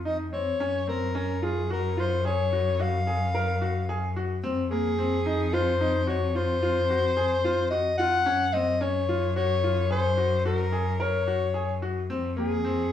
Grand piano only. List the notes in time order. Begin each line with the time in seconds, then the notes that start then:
0.05 D#4
0.33 C4
0.60 C#4
0.87 C4
1.15 C#4
1.42 F4
1.70 F#4
1.97 F4
2.25 G#4
2.53 F#4
2.79 F#4
3.07 G#4
3.35 A#4
3.62 F#4
3.89 G#4
4.16 F#4
4.44 C4
4.71 A#3
4.98 C4
5.26 D#4
5.53 F4
5.81 D#4
6.07 F#4
6.35 F4
6.62 F4
6.90 F#4
7.17 G#4
7.44 F4
7.71 F#4
7.99 F4
8.26 C#4
8.54 C4
8.81 C#4
9.09 F4
9.36 F#4
9.64 F4
9.91 G#4
10.17 F#4
10.45 F#4
10.72 G#4
11.00 A#4
11.27 F#4
11.54 G#4
11.82 F#4
12.10 C4
12.37 A#3
12.65 C4